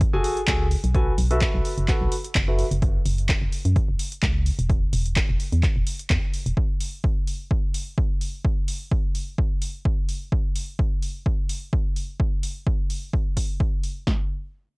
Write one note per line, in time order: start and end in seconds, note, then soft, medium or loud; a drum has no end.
0.00 kick loud
0.00 closed hi-hat medium
0.00 sub drop medium
0.13 0.20 F#1 medium
0.13 0.38 F#4 medium
0.13 0.38 G#4 medium
0.13 0.38 A4 medium
0.13 0.38 G#5 loud
0.24 open hi-hat loud
0.37 closed hi-hat medium
0.47 0.76 C#2 medium
0.47 0.64 F#4 medium
0.47 0.64 G#4 medium
0.47 0.64 A4 medium
0.47 0.64 G#5 medium
0.47 kick loud
0.47 clap loud
0.47 closed hi-hat medium
0.71 open hi-hat medium
0.84 1.12 B1 medium
0.84 closed hi-hat medium
0.95 1.10 F#4 medium
0.95 1.10 A4 medium
0.95 1.10 B4 medium
0.95 1.10 G#5 medium
0.95 kick loud
0.95 closed hi-hat medium
1.18 1.47 B1 loud
1.18 open hi-hat loud
1.31 1.86 F#4 medium
1.31 1.86 A4 medium
1.31 1.86 B4 medium
1.31 1.86 E5 medium
1.31 closed hi-hat medium
1.41 kick loud
1.41 clap loud
1.41 closed hi-hat soft
1.54 1.61 B1 loud
1.65 open hi-hat loud
1.78 1.92 F#1 medium
1.78 closed hi-hat medium
1.88 2.13 F#4 medium
1.88 2.13 A4 medium
1.88 2.13 B4 medium
1.88 2.13 F#5 medium
1.88 kick loud
1.88 clap medium
1.88 closed hi-hat medium
2.01 2.08 B1 medium
2.12 open hi-hat loud
2.24 closed hi-hat medium
2.35 2.64 F#1 medium
2.35 kick loud
2.35 clap loud
2.35 closed hi-hat soft
2.48 2.62 F#4 medium
2.48 2.62 A4 medium
2.48 2.62 B4 medium
2.48 2.62 E5 medium
2.59 open hi-hat loud
2.71 2.99 F#1 loud
2.71 closed hi-hat medium
2.82 kick loud
2.82 closed hi-hat soft
3.05 3.34 F#1 loud
3.05 open hi-hat loud
3.18 closed hi-hat medium
3.29 kick loud
3.29 clap loud
3.29 closed hi-hat soft
3.42 3.48 F#1 medium
3.52 open hi-hat loud
3.65 3.79 F#2 medium
3.65 closed hi-hat medium
3.76 kick loud
3.76 closed hi-hat medium
3.88 3.95 F#1 medium
3.99 open hi-hat loud
4.12 closed hi-hat medium
4.23 4.51 C#2 medium
4.23 kick loud
4.23 clap loud
4.23 closed hi-hat soft
4.46 open hi-hat loud
4.59 4.86 E1 medium
4.59 closed hi-hat medium
4.70 kick loud
4.70 closed hi-hat soft
4.93 5.21 E1 loud
4.93 open hi-hat loud
5.06 closed hi-hat medium
5.16 kick loud
5.16 clap loud
5.16 closed hi-hat soft
5.29 5.36 E1 medium
5.40 open hi-hat loud
5.52 5.66 E2 medium
5.52 closed hi-hat medium
5.63 kick loud
5.63 clap medium
5.63 closed hi-hat soft
5.76 5.83 E1 medium
5.87 open hi-hat loud
5.99 closed hi-hat medium
6.10 6.18 E2 loud
6.10 kick loud
6.10 clap loud
6.10 closed hi-hat soft
6.34 open hi-hat loud
6.46 6.53 E1 medium
6.46 closed hi-hat medium
6.57 kick loud
6.80 open hi-hat loud
7.04 kick loud
7.27 open hi-hat medium
7.51 kick loud
7.74 open hi-hat loud
7.98 kick loud
8.21 open hi-hat medium
8.45 kick loud
8.68 open hi-hat medium
8.91 kick loud
9.15 open hi-hat medium
9.38 kick loud
9.62 open hi-hat medium
9.85 kick loud
10.09 open hi-hat medium
10.32 kick loud
10.56 open hi-hat medium
10.79 kick loud
11.02 open hi-hat medium
11.26 kick loud
11.49 open hi-hat medium
11.73 kick loud
11.96 open hi-hat medium
12.20 kick loud
12.43 open hi-hat medium
12.67 kick loud
12.90 open hi-hat medium
13.13 kick medium
13.37 kick medium
13.37 open hi-hat medium
13.60 kick loud
13.84 open hi-hat medium
14.07 kick medium
14.07 snare medium